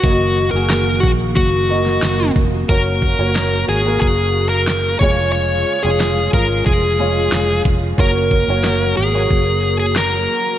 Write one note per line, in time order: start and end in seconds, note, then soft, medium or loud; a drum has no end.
0.00 0.50 F#1 medium
0.00 2.66 D#3 medium
0.00 4.97 A#3 medium
0.00 0.44 A#3 medium
0.00 0.48 F#4 medium
0.00 2.65 F#4 medium
0.00 0.44 F#4 medium
0.00 kick medium
0.00 closed hi-hat medium
0.05 0.44 D#5 medium
0.37 closed hi-hat medium
0.51 1.00 F#1 medium
0.51 1.47 A#3 medium
0.51 1.47 F#4 medium
0.51 0.98 A#4 medium
0.55 1.48 G#4 medium
0.70 snare medium
0.70 closed hi-hat medium
1.00 1.34 A#1 medium
1.00 1.10 F#4 medium
1.00 kick medium
1.00 closed hi-hat medium
1.20 closed hi-hat soft
1.36 1.99 F#1 medium
1.36 2.31 F#4 medium
1.36 kick medium
1.36 closed hi-hat medium
1.69 2.49 A#3 medium
1.69 2.50 F#4 medium
1.69 2.50 D#5 medium
1.69 closed hi-hat medium
1.86 snare soft
2.03 2.34 F#1 medium
2.03 snare loud
2.03 closed hi-hat medium
2.20 closed hi-hat soft
2.36 2.67 F1 medium
2.36 kick medium
2.36 closed hi-hat medium
2.69 3.15 F#1 medium
2.69 10.59 C#3 medium
2.69 3.09 A#3 medium
2.69 4.98 F#4 medium
2.69 3.09 F#4 medium
2.69 3.64 A#4 medium
2.69 3.10 C#5 medium
2.69 kick loud
2.69 closed hi-hat medium
3.02 kick medium
3.02 closed hi-hat medium
3.18 3.65 F#1 medium
3.18 3.72 A#3 medium
3.18 3.72 F#4 medium
3.18 3.72 C#5 medium
3.35 snare medium
3.35 closed hi-hat medium
3.68 3.99 G#1 medium
3.68 3.99 G#4 medium
3.68 closed hi-hat medium
3.85 4.91 A#3 medium
3.85 4.92 F#4 medium
3.85 4.92 A#4 medium
4.01 4.97 F#1 medium
4.01 4.49 G#4 medium
4.01 kick medium
4.01 closed hi-hat medium
4.35 closed hi-hat medium
4.49 4.96 A#4 medium
4.68 snare medium
4.68 closed hi-hat medium
4.99 5.63 F1 medium
4.99 5.68 G#3 medium
4.99 7.96 G#3 medium
4.99 7.96 F4 medium
4.99 5.68 F4 medium
4.99 5.31 C#5 medium
4.99 5.68 C#5 medium
4.99 kick medium
4.99 closed hi-hat medium
5.32 5.84 C#5 medium
5.32 closed hi-hat medium
5.67 closed hi-hat medium
5.83 6.30 F1 medium
5.83 6.77 G#3 medium
5.83 6.77 F4 medium
5.83 6.29 G#4 medium
5.83 6.78 C#5 medium
6.00 snare medium
6.00 closed hi-hat medium
6.33 6.64 G#1 medium
6.33 6.65 A#4 medium
6.33 kick medium
6.33 closed hi-hat medium
6.66 7.29 F1 medium
6.66 7.61 G#4 medium
6.66 kick medium
6.66 closed hi-hat medium
6.99 7.79 G#3 medium
6.99 7.80 F4 medium
6.99 7.80 C#5 medium
6.99 closed hi-hat medium
7.32 7.63 F1 medium
7.32 snare loud
7.32 closed hi-hat medium
7.65 7.96 F1 medium
7.65 kick loud
7.65 closed hi-hat medium
7.97 8.44 F#1 medium
7.97 10.59 F#3 medium
7.97 10.59 A#3 medium
7.97 8.38 A#3 medium
7.97 8.38 F#4 medium
7.97 8.97 A#4 medium
7.97 8.39 C#5 medium
7.97 kick loud
7.97 closed hi-hat medium
8.31 kick medium
8.31 closed hi-hat medium
8.48 8.94 F#1 medium
8.48 9.02 A#3 medium
8.48 9.02 F#4 medium
8.48 9.02 C#5 medium
8.64 snare medium
8.64 closed hi-hat medium
8.97 9.29 G#1 medium
8.97 9.76 G#4 medium
8.97 closed hi-hat medium
9.13 10.20 A#3 medium
9.13 10.21 F#4 medium
9.13 10.21 C#5 medium
9.30 10.26 F#1 medium
9.30 kick medium
9.30 closed hi-hat medium
9.63 closed hi-hat medium
9.80 9.97 G#4 medium
9.96 10.59 A#4 medium
9.96 snare medium
9.96 closed hi-hat medium
10.29 closed hi-hat medium